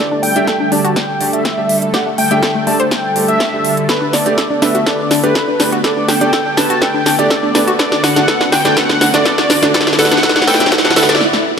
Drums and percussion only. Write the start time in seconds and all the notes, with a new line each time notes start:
0.23 open hi-hat
0.36 closed hi-hat
0.47 kick, snare, closed hi-hat
0.72 open hi-hat
0.85 closed hi-hat
0.96 kick, snare, closed hi-hat
1.21 open hi-hat
1.33 closed hi-hat
1.45 kick, snare, closed hi-hat
1.69 open hi-hat
1.82 closed hi-hat
1.94 kick, snare, closed hi-hat
2.18 open hi-hat
2.31 closed hi-hat
2.43 kick, snare, closed hi-hat
2.67 open hi-hat
2.80 closed hi-hat
2.91 kick, snare, closed hi-hat
3.16 open hi-hat
3.28 closed hi-hat
3.40 kick, snare, closed hi-hat
3.65 open hi-hat
3.77 closed hi-hat
3.89 kick, snare, closed hi-hat
4.13 snare, open hi-hat
4.26 closed hi-hat
4.38 kick, snare, closed hi-hat
4.62 snare, open hi-hat
4.75 closed hi-hat
4.86 kick, snare, closed hi-hat
5.11 snare, open hi-hat
5.24 closed hi-hat
5.35 kick, snare, closed hi-hat
5.60 snare, open hi-hat
5.72 closed hi-hat
5.84 kick, snare, closed hi-hat
6.08 snare, open hi-hat
6.21 closed hi-hat
6.33 kick, snare, closed hi-hat
6.57 snare, open hi-hat
6.70 closed hi-hat
6.82 kick, snare, closed hi-hat
7.06 snare, open hi-hat
7.19 closed hi-hat
7.30 kick, snare, closed hi-hat
7.55 snare, open hi-hat
7.68 closed hi-hat
7.79 kick, snare, closed hi-hat
7.92 snare
8.04 snare, open hi-hat
8.16 snare, closed hi-hat
8.28 kick, snare, closed hi-hat
8.41 snare
8.52 snare, open hi-hat
8.65 snare, closed hi-hat
8.77 kick, snare, closed hi-hat
8.89 snare
9.01 snare, open hi-hat
9.14 snare, closed hi-hat
9.25 kick, snare, closed hi-hat
9.38 snare
9.50 snare, open hi-hat
9.63 snare, closed hi-hat
9.74 kick, snare, closed hi-hat
9.81 snare
9.87 kick, snare
9.93 snare
9.99 snare, open hi-hat
10.05 snare
10.11 snare, closed hi-hat
10.17 snare
10.23 kick, snare, closed hi-hat
10.29 snare
10.36 snare
10.42 snare
10.48 snare, open hi-hat
10.54 snare
10.60 snare, closed hi-hat
10.66 snare
10.72 kick, snare, closed hi-hat
10.78 snare
10.85 snare
10.90 snare
10.96 snare, open hi-hat
11.03 snare
11.09 snare, closed hi-hat
11.15 snare
11.21 snare
11.33 snare